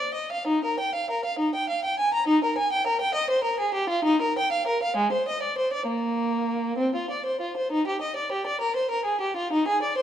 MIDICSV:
0, 0, Header, 1, 2, 480
1, 0, Start_track
1, 0, Key_signature, -3, "major"
1, 0, Tempo, 677201
1, 342, Time_signature, 6, 3, 24, 8
1, 342, Tempo, 612245
1, 822, Tempo, 587659
1, 2742, Tempo, 607287
1, 7939, End_track
2, 0, Start_track
2, 0, Title_t, "Violin"
2, 0, Program_c, 0, 40
2, 0, Note_on_c, 0, 74, 55
2, 96, Note_off_c, 0, 74, 0
2, 101, Note_on_c, 0, 75, 51
2, 221, Note_off_c, 0, 75, 0
2, 227, Note_on_c, 0, 77, 54
2, 334, Note_on_c, 0, 63, 59
2, 340, Note_off_c, 0, 77, 0
2, 458, Note_off_c, 0, 63, 0
2, 468, Note_on_c, 0, 70, 48
2, 585, Note_off_c, 0, 70, 0
2, 588, Note_on_c, 0, 79, 54
2, 703, Note_off_c, 0, 79, 0
2, 708, Note_on_c, 0, 77, 52
2, 821, Note_off_c, 0, 77, 0
2, 830, Note_on_c, 0, 70, 49
2, 944, Note_off_c, 0, 70, 0
2, 949, Note_on_c, 0, 77, 56
2, 1062, Note_on_c, 0, 63, 53
2, 1065, Note_off_c, 0, 77, 0
2, 1182, Note_off_c, 0, 63, 0
2, 1193, Note_on_c, 0, 79, 53
2, 1308, Note_off_c, 0, 79, 0
2, 1311, Note_on_c, 0, 77, 54
2, 1427, Note_off_c, 0, 77, 0
2, 1436, Note_on_c, 0, 79, 56
2, 1550, Note_off_c, 0, 79, 0
2, 1555, Note_on_c, 0, 80, 56
2, 1669, Note_off_c, 0, 80, 0
2, 1675, Note_on_c, 0, 82, 60
2, 1788, Note_on_c, 0, 63, 70
2, 1789, Note_off_c, 0, 82, 0
2, 1905, Note_off_c, 0, 63, 0
2, 1922, Note_on_c, 0, 70, 55
2, 2031, Note_off_c, 0, 70, 0
2, 2034, Note_on_c, 0, 80, 62
2, 2146, Note_off_c, 0, 80, 0
2, 2151, Note_on_c, 0, 79, 67
2, 2264, Note_off_c, 0, 79, 0
2, 2272, Note_on_c, 0, 70, 59
2, 2384, Note_off_c, 0, 70, 0
2, 2385, Note_on_c, 0, 79, 70
2, 2496, Note_on_c, 0, 75, 71
2, 2500, Note_off_c, 0, 79, 0
2, 2616, Note_off_c, 0, 75, 0
2, 2624, Note_on_c, 0, 72, 64
2, 2735, Note_on_c, 0, 70, 60
2, 2741, Note_off_c, 0, 72, 0
2, 2855, Note_off_c, 0, 70, 0
2, 2860, Note_on_c, 0, 68, 60
2, 2975, Note_on_c, 0, 67, 62
2, 2979, Note_off_c, 0, 68, 0
2, 3097, Note_on_c, 0, 65, 64
2, 3098, Note_off_c, 0, 67, 0
2, 3215, Note_on_c, 0, 63, 77
2, 3219, Note_off_c, 0, 65, 0
2, 3339, Note_off_c, 0, 63, 0
2, 3352, Note_on_c, 0, 70, 61
2, 3468, Note_off_c, 0, 70, 0
2, 3485, Note_on_c, 0, 79, 68
2, 3592, Note_on_c, 0, 77, 64
2, 3594, Note_off_c, 0, 79, 0
2, 3706, Note_off_c, 0, 77, 0
2, 3710, Note_on_c, 0, 70, 61
2, 3824, Note_off_c, 0, 70, 0
2, 3836, Note_on_c, 0, 77, 65
2, 3942, Note_on_c, 0, 56, 65
2, 3946, Note_off_c, 0, 77, 0
2, 4058, Note_off_c, 0, 56, 0
2, 4068, Note_on_c, 0, 72, 55
2, 4180, Note_off_c, 0, 72, 0
2, 4195, Note_on_c, 0, 75, 55
2, 4304, Note_off_c, 0, 75, 0
2, 4307, Note_on_c, 0, 74, 51
2, 4420, Note_off_c, 0, 74, 0
2, 4430, Note_on_c, 0, 72, 49
2, 4542, Note_off_c, 0, 72, 0
2, 4549, Note_on_c, 0, 74, 53
2, 4657, Note_on_c, 0, 58, 59
2, 4663, Note_off_c, 0, 74, 0
2, 5368, Note_off_c, 0, 58, 0
2, 5377, Note_on_c, 0, 60, 57
2, 5499, Note_off_c, 0, 60, 0
2, 5513, Note_on_c, 0, 65, 44
2, 5628, Note_off_c, 0, 65, 0
2, 5633, Note_on_c, 0, 74, 45
2, 5750, Note_off_c, 0, 74, 0
2, 5755, Note_on_c, 0, 72, 44
2, 5873, Note_off_c, 0, 72, 0
2, 5874, Note_on_c, 0, 65, 39
2, 5993, Note_off_c, 0, 65, 0
2, 6002, Note_on_c, 0, 72, 47
2, 6117, Note_off_c, 0, 72, 0
2, 6118, Note_on_c, 0, 63, 64
2, 6234, Note_off_c, 0, 63, 0
2, 6242, Note_on_c, 0, 67, 53
2, 6353, Note_on_c, 0, 75, 50
2, 6355, Note_off_c, 0, 67, 0
2, 6469, Note_on_c, 0, 74, 55
2, 6470, Note_off_c, 0, 75, 0
2, 6587, Note_off_c, 0, 74, 0
2, 6594, Note_on_c, 0, 67, 51
2, 6709, Note_off_c, 0, 67, 0
2, 6711, Note_on_c, 0, 74, 57
2, 6823, Note_on_c, 0, 70, 58
2, 6827, Note_off_c, 0, 74, 0
2, 6941, Note_off_c, 0, 70, 0
2, 6943, Note_on_c, 0, 72, 58
2, 7061, Note_off_c, 0, 72, 0
2, 7061, Note_on_c, 0, 70, 53
2, 7170, Note_on_c, 0, 68, 54
2, 7179, Note_off_c, 0, 70, 0
2, 7294, Note_off_c, 0, 68, 0
2, 7297, Note_on_c, 0, 67, 53
2, 7418, Note_off_c, 0, 67, 0
2, 7421, Note_on_c, 0, 65, 57
2, 7540, Note_off_c, 0, 65, 0
2, 7547, Note_on_c, 0, 63, 68
2, 7664, Note_off_c, 0, 63, 0
2, 7669, Note_on_c, 0, 68, 62
2, 7783, Note_on_c, 0, 74, 61
2, 7784, Note_off_c, 0, 68, 0
2, 7899, Note_off_c, 0, 74, 0
2, 7905, Note_on_c, 0, 72, 63
2, 7939, Note_off_c, 0, 72, 0
2, 7939, End_track
0, 0, End_of_file